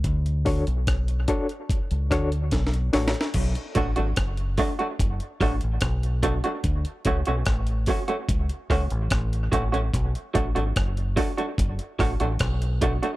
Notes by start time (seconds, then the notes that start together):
0.04 D2, kick, closed hi-hat
0.26 closed hi-hat
0.45 D4 F#4 A4 C#5, kick, open hi-hat
0.67 B1, closed hi-hat
0.87 kick, cross-stick, closed hi-hat
1.08 closed hi-hat
1.28 D4 F#4 A4 C#5, kick, closed hi-hat
1.49 closed hi-hat
1.70 kick, closed hi-hat
1.91 C#2, closed hi-hat
2.11 D2 D4 F#4 A4 C#5, kick, cross-stick, closed hi-hat
2.32 closed hi-hat
2.51 B1, kick, snare, closed hi-hat
2.67 snare
2.74 closed hi-hat
2.93 A1 D4 F#4 A4 C#5, snare, open hi-hat
3.08 snare
3.14 closed hi-hat
3.21 snare
3.34 B1, kick, closed hi-hat, crash
3.55 closed hi-hat
3.75 A1 F#3 A3 D4 F#4, kick, closed hi-hat
3.96 G#1 F#3 A3 D4 F#4, closed hi-hat
4.16 F#1, kick, cross-stick, closed hi-hat
4.37 closed hi-hat
4.58 F#3 A3 D4 F#4, kick, open hi-hat
4.79 F#3 A3 D4 F#4, closed hi-hat
5.00 F#1, kick, closed hi-hat
5.20 closed hi-hat
5.41 A1 F#3 A3 D4 F#4, kick, cross-stick, open hi-hat
5.61 A1, closed hi-hat
5.81 B1, kick, cross-stick, closed hi-hat
6.03 closed hi-hat
6.23 F#3 A3 D4 F#4, kick, closed hi-hat
6.44 F#3 A3 D4 F#4, closed hi-hat
6.64 D2, kick, closed hi-hat
6.85 closed hi-hat
7.05 C#2 F#3 A3 C#4 F#4, kick, closed hi-hat
7.25 B1 F#3 A3 C#4 F#4, closed hi-hat
7.46 A1, kick, cross-stick, closed hi-hat
7.67 closed hi-hat
7.86 F#3 A3 C#4 F#4, kick, open hi-hat
8.08 F#3 A3 C#4 F#4, closed hi-hat
8.29 C#2, kick, closed hi-hat
8.49 closed hi-hat
8.70 C#2 F#3 A3 C#4 F#4, kick, cross-stick, open hi-hat
8.90 A1, closed hi-hat
9.10 A1, kick, cross-stick, closed hi-hat
9.33 closed hi-hat
9.52 A1 F#3 A3 C#4 F#4, kick, closed hi-hat
9.72 F#3 A3 C#4 F#4, closed hi-hat
9.94 B1, kick, closed hi-hat
10.15 closed hi-hat
10.34 A1 F#3 A3 D4 F#4, kick, closed hi-hat
10.55 G#1 F#3 A3 D4 F#4, closed hi-hat
10.76 F#1, kick, cross-stick, closed hi-hat
10.97 closed hi-hat
11.16 F#3 A3 D4 F#4, kick, open hi-hat
11.38 F#3 A3 D4 F#4, closed hi-hat
11.58 F#1, kick, closed hi-hat
11.79 closed hi-hat
11.99 A1 F#3 A3 D4 F#4, kick, cross-stick, open hi-hat
12.20 A1 F#3 A3 D4 F#4, closed hi-hat
12.39 B1, kick, cross-stick, closed hi-hat
12.62 closed hi-hat
12.81 F#3 A3 D4 F#4, kick, closed hi-hat
13.03 F#3 A3 D4 F#4, closed hi-hat